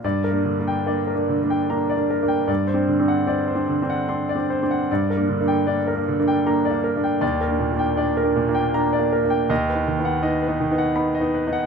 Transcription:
\new Staff \with { instrumentName = "Grand piano" } { \time 3/4 \key g \minor \tempo 4 = 78 << { d''16 bes'16 d16 g''16 d''16 bes'16 d16 g''16 bes''16 d''16 bes'16 g''16 | d''16 c''16 d16 fis''16 d''16 c''16 d16 fis''16 c'''16 d''16 c''16 fis''16 | d''16 bes'16 d16 g''16 d''16 bes'16 d16 g''16 bes''16 d''16 bes'16 g''16 | d''16 bes'16 bes,16 g''16 d''16 bes'16 bes,16 g''16 bes''16 d''16 bes'16 g''16 |
\key b \lydian dis''16 b'16 dis16 fis''16 dis''16 b'16 dis16 fis''16 b''16 dis''16 b'16 fis''16 | } \\ { \tuplet 3/2 { g,8 <bes d'>8 <bes d'>8 <bes d'>8 <bes d'>8 <bes d'>8 <bes d'>8 <bes d'>8 <bes d'>8 } | \tuplet 3/2 { g,8 <c' d'>8 <c' d'>8 <c' d'>8 <c' d'>8 <c' d'>8 <c' d'>8 <c' d'>8 <c' d'>8 } | \tuplet 3/2 { g,8 <bes d'>8 <bes d'>8 <bes d'>8 <bes d'>8 <bes d'>8 <bes d'>8 <bes d'>8 <bes d'>8 } | \tuplet 3/2 { ees,8 <bes d'>8 <bes d'>8 <bes d'>8 <bes d'>8 <bes d'>8 <bes d'>8 <bes d'>8 <bes d'>8 } |
\tuplet 3/2 { dis,8 <b dis'>8 <b dis'>8 <b dis'>8 <b dis'>8 <b dis'>8 <b dis'>8 <b dis'>8 <b dis'>8 } | } >> }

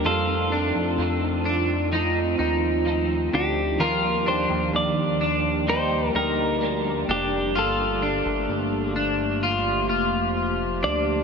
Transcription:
<<
  \new Staff \with { instrumentName = "Clean electric guitar" } { \time 4/4 \key f \mixolydian \tempo 4 = 64 a'2.~ a'8 g'8 | bes'8 c''8 d''4 c''8 bes'4 g'8 | a'4. r2 d''8 | }
  \new Staff \with { instrumentName = "Clean electric guitar" } { \time 4/4 \key f \mixolydian f'8 d'4 d'8 ees'8 ees'4 d'8 | f'8 d'4 d'8 ees'8 ees'4 d'8 | f'8 d'4 d'8 f'8 f'4 d'8 | }
  \new Staff \with { instrumentName = "Clean electric guitar" } { \time 4/4 \key f \mixolydian <f c' ees' a'>4 <f c' ees' a'>4 <f c' ees' a'>4 <f c' ees' a'>4 | <ees g bes d' g'>2 <g bes d' g'>4 <g bes d' g'>4 | r1 | }
  \new Staff \with { instrumentName = "Ambient pad" } { \time 4/4 \key f \mixolydian << { <a c' f'>1 | <bes g' d''>1 | <a bes g'>1 | } \\ { f1~ | f1 | f1 | } >> }
  \new Staff \with { instrumentName = "Analog synth bass" } { \clef bass \time 4/4 \key f \mixolydian f,8. f,16 f,4. ees,4 d,8 | ees,8. ees,16 ees,4. d,4 f,,8 | g,,8. g,,16 g,,4. f,,4 d,8 | }
>>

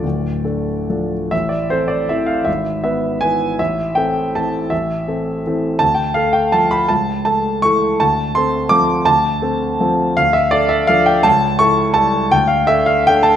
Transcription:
\new Staff \with { instrumentName = "Grand piano" } { \time 3/4 \key d \minor \tempo 4 = 163 << { d''2~ d''8 r8 | \key a \minor e''8 d''8 c''8 d''8 e''8 f''8 | e''4 e''4 gis''4 | e''4 g''4 a''4 |
e''2. | a''8 g''8 f''8 g''8 a''8 b''8 | a''4 a''4 cis'''4 | a''4 c'''4 d'''4 |
a''2. | \key d \minor f''8 e''8 d''8 e''8 f''8 g''8 | a''4 cis'''4 a''4 | g''8 f''8 e''8 f''8 g''8 a''8 | } \\ { <d,, d,>4 <d' a'>4 <f d' a'>4 | a,,4 <c' a'>4 <e c' a'>4 | gis,,4 <b b'>4 <e b b'>4 | a,,4 <c' a'>4 <e c' a'>4 |
a,,4 <c' a'>4 <e c' a'>4 | d,4 <a a'>4 <f a a'>4 | cis,4 <a a'>4 <e a a'>4 | d,4 <c' a'>4 <f c' a'>4 |
d,4 <c' a'>4 <f c' a'>4 | d,4 <d' a'>4 <f d' a'>4 | cis,4 <e' a'>4 <g e' a'>4 | d,4 <d' a'>4 <a d' a'>4 | } >> }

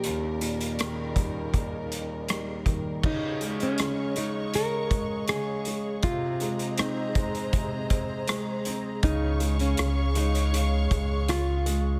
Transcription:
<<
  \new Staff \with { instrumentName = "String section" } { \time 4/4 \key des \lydian \tempo 4 = 80 << { <g ees' bes'>1 | <des'' ees'' des'''>1 | <c' c'' ees'' bes''>1 | <des'' f'' des'''>1 | } \\ { des1 | aes'1~ | aes'1~ | aes'1 | } >> }
  \new Staff \with { instrumentName = "Nylon-string guitar" } { \time 4/4 \key des \lydian g'2.~ g'8 r8 | ees'8. des'8. ees'8 bes'4 aes'4 | f'4 ees'2~ ees'8 r8 | ees'8. des'8. ees'4. f'4 | }
  \new Staff \with { instrumentName = "Grand piano" } { \clef bass \time 4/4 \key des \lydian ees,8 bes,8 ees8 g8 bes4 g8 ees8 | des8 aes8 des8 aes8 des8 aes8 des8 aes8 | c8 aes8 c'8 aes8 c8 c'8 aes8 c'8 | des8 aes8 des8 aes8 des8 aes8 des8 aes8 | }
  \new Staff \with { instrumentName = "Sub bass" } { \clef bass \time 4/4 \key des \lydian r1 | r1 | r1 | des,4 des,4. des,4. | }
  \new DrumStaff \with { instrumentName = "Drums" } \drummode { \time 4/4 hh8 hh16 hh16 <hh ss>8 <hh bd>8 <hh bd>8 hh8 <hh ss>8 <hh bd>8 | <cymc bd>8 hh16 hh16 <hh ss>8 hh8 hh8 <hh bd>8 <hh ss>8 hh8 | <hh bd>8 hh16 hh16 <hh ss>8 <hh bd>16 hh16 <hh bd>8 <hh bd>8 <hh ss>8 hh8 | <hh bd>8 hh16 hh16 <hh ss>8 hh16 hh16 hh8 <hh bd>8 <hh ss>8 hh8 | }
>>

